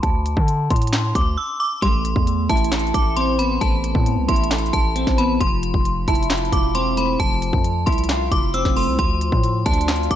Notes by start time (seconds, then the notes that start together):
0.03 D2 A5, kick, closed hi-hat
0.26 closed hi-hat
0.37 D3, kick
0.48 closed hi-hat
0.70 A2 C6, kick, closed hi-hat
0.76 closed hi-hat
0.82 closed hi-hat
0.87 closed hi-hat
0.93 snare, clap, closed hi-hat
1.15 D2 D6, kick, closed hi-hat
1.37 E6
1.60 D6
1.82 A1 A3 C6, kick, closed hi-hat
2.05 closed hi-hat
2.16 E2, kick
2.27 closed hi-hat
2.49 A1 E4 A5, kick, closed hi-hat
2.57 closed hi-hat
2.64 closed hi-hat
2.72 A4, snare, clap, closed hi-hat
2.79 closed hi-hat
2.87 closed hi-hat
2.94 A1 D6, kick, closed hi-hat
3.16 C4 C6, closed hi-hat
3.39 B3 B5, closed hi-hat
3.61 A1 A3 A5, kick, closed hi-hat
3.84 closed hi-hat
3.95 A2, kick
4.06 closed hi-hat
4.17 C2
4.28 A1 E4 C6, kick, closed hi-hat
4.36 closed hi-hat
4.44 closed hi-hat
4.51 A4, snare, clap, closed hi-hat
4.58 closed hi-hat
4.66 closed hi-hat
4.73 A1 A5, kick, closed hi-hat
4.96 C4, closed hi-hat
5.07 A1, kick, snare
5.18 B3 B5, closed hi-hat
5.41 F1 F3 C6, kick, closed hi-hat
5.63 closed hi-hat
5.74 F1, kick
5.85 closed hi-hat
6.08 F1 E4 A5, kick, closed hi-hat
6.15 closed hi-hat
6.23 closed hi-hat
6.30 F4, snare, clap, closed hi-hat
6.38 closed hi-hat
6.45 closed hi-hat
6.52 E1 D6, kick, closed hi-hat
6.75 C4 C6, closed hi-hat
6.97 A3 B5, closed hi-hat
7.20 F1 F3 A5, kick, closed hi-hat
7.42 closed hi-hat
7.53 F2, kick
7.64 closed hi-hat
7.86 C2 E4 C6, kick, closed hi-hat
7.92 closed hi-hat
7.98 closed hi-hat
8.04 closed hi-hat
8.09 F4, snare, clap, closed hi-hat
8.32 F1 D6, kick, closed hi-hat
8.54 C4 E6, closed hi-hat
8.65 F1, kick, snare
8.76 A3 C6, open hi-hat
8.88 C2
8.99 D2 F3 C6, kick, closed hi-hat
9.21 closed hi-hat
9.32 A2, kick
9.44 closed hi-hat
9.66 D2 D4 A5, kick, closed hi-hat
9.73 closed hi-hat
9.81 closed hi-hat
9.88 F4, snare, clap, closed hi-hat
9.96 closed hi-hat
10.03 closed hi-hat
10.11 D2 D6, kick, closed hi-hat